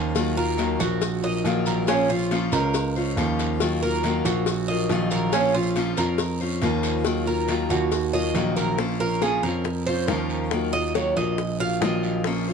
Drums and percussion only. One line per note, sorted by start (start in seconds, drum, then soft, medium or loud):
0.16 cowbell loud
0.16 long guiro medium
0.16 maracas medium
0.38 maracas soft
0.59 cowbell medium
0.59 short guiro medium
0.59 maracas soft
0.80 cowbell medium
0.80 short guiro medium
0.80 maracas medium
1.02 cowbell loud
1.02 long guiro medium
1.02 maracas medium
1.23 maracas soft
1.45 cowbell medium
1.45 short guiro medium
1.45 maracas soft
1.66 short guiro medium
1.66 maracas medium
1.87 cowbell loud
1.87 long guiro medium
1.87 maracas medium
2.09 maracas soft
2.31 cowbell medium
2.31 short guiro medium
2.31 maracas soft
2.52 cowbell medium
2.52 short guiro medium
2.52 maracas medium
2.74 cowbell medium
2.74 long guiro medium
2.74 maracas medium
2.96 maracas soft
3.17 cowbell medium
3.17 short guiro medium
3.17 maracas soft
3.39 cowbell medium
3.39 short guiro medium
3.39 maracas medium
3.60 cowbell loud
3.60 long guiro medium
3.60 maracas medium
3.83 maracas soft
4.03 cowbell medium
4.03 short guiro medium
4.03 maracas soft
4.25 cowbell medium
4.25 short guiro medium
4.25 maracas medium
4.46 cowbell loud
4.46 long guiro medium
4.46 maracas medium
4.68 maracas soft
4.89 cowbell medium
4.89 short guiro medium
4.89 maracas soft
5.11 short guiro medium
5.11 maracas medium
5.32 cowbell loud
5.32 long guiro medium
5.32 maracas medium
5.54 maracas soft
5.76 cowbell medium
5.76 short guiro medium
5.76 maracas soft
5.97 cowbell medium
5.97 short guiro medium
5.97 maracas medium
6.18 cowbell loud
6.18 long guiro medium
6.18 maracas medium
6.40 maracas soft
6.62 cowbell medium
6.62 short guiro medium
6.62 maracas soft
6.83 cowbell medium
6.83 short guiro medium
6.83 maracas medium
7.05 cowbell loud
7.05 long guiro medium
7.05 maracas medium
7.27 maracas soft
7.48 cowbell medium
7.48 short guiro medium
7.48 maracas soft
7.70 cowbell medium
7.70 short guiro medium
7.70 maracas medium
7.92 cowbell loud
7.92 long guiro medium
7.92 maracas medium
8.14 maracas soft
8.35 cowbell medium
8.35 short guiro medium
8.35 maracas soft
8.57 short guiro medium
8.57 maracas medium
8.79 high bongo medium
8.79 long guiro medium
9.22 high bongo medium
9.22 short guiro medium
9.44 short guiro medium
9.65 high bongo medium
9.65 long guiro medium
10.08 high bongo medium
10.08 low bongo medium
10.08 short guiro medium
10.30 short guiro medium
10.51 high bongo medium
10.51 long guiro medium
10.74 high bongo soft
10.94 high bongo medium
10.94 short guiro medium
11.16 high bongo soft
11.16 short guiro medium
11.38 high bongo medium
11.38 long guiro medium
11.60 high bongo soft
11.82 high bongo medium
11.82 low bongo medium
11.82 short guiro medium
12.03 short guiro medium
12.24 high bongo medium
12.24 long guiro medium